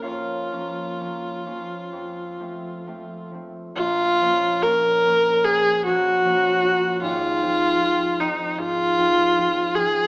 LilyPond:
<<
  \new Staff \with { instrumentName = "Viola" } { \time 4/4 \key bes \minor \tempo 4 = 74 f'2.~ f'8 r8 | f'4 bes'4 aes'8 ges'4. | f'4. ees'8 f'4. aes'8 | }
  \new Staff \with { instrumentName = "Harp" } { \time 4/4 \key bes \minor << { f''1~ | f''1 | r1 | } \\ { <bes' des''>2.~ <bes' des''>8 r8 | r1 | r1 | } >> }
  \new Staff \with { instrumentName = "Harp" } { \time 4/4 \key bes \minor <f, bes des'>8 <f bes des'>8 <f bes des'>8 <f bes des'>8 f,8 <f a c'>8 <f a c'>8 <f a c'>8 | <bes,, bes,>8 <f bes des'>8 <f bes des'>8 <f bes des'>8 f,8 <f bes des'>8 <f bes des'>8 <f bes des'>8 | <aes,, aes,>8 <f c' f'>8 <f c' f'>8 <f c' f'>8 aes,8 <f c' f'>8 <f c' f'>8 <f c' f'>8 | }
>>